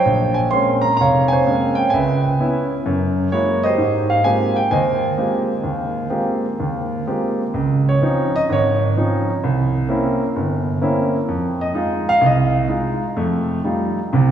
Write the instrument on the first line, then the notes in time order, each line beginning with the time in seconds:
grand piano
Already playing: C5 C#5 G5
0.05 A#1
0.34 G#5
0.51 G#3 A#3 C4 C#4 C6
0.82 A#5
0.97 F1 A#5
1.01 C#5 F5
1.28 G#5
1.32 C5 C#5
1.47 G#3 A#3 C4 C#4
1.75 G5
1.90 C#2 G#5
1.94 B4 E5
2.40 B3 C#4 E4
2.86 F#2
3.32 G#3 A#3 E4 F#4 C#5
3.63 G4 C5 D#5
3.78 G#2
4.10 F5
4.24 G#3 A#3 C4 F4 G4 G#5
4.56 G5
4.71 D#2 C5 D#5 G#5
5.17 G#3 A#3 C4 F4 G4
5.64 D#2
6.10 G#3 A#3 C4 F4 G4
6.60 D#2
7.07 G#3 A#3 C4 F4 G4
7.54 C#2
7.89 C#5
8.02 F3 C4 C#4 D#4
8.36 D#5
8.50 G#1 C#5
8.97 F3 C4 C#4 D#4
9.44 C2
9.89 A#3 C4 C#4 E4
10.36 G1
10.81 A#3 C4 C#4 E4
11.28 F2
11.61 D#5
11.74 G#3 D#4 F4
12.09 F5
12.21 C2
12.26 D#5
12.68 G#3 D#4 F4
13.16 F2 A3
13.64 G3 A3 D#4 F4
14.13 C2 C3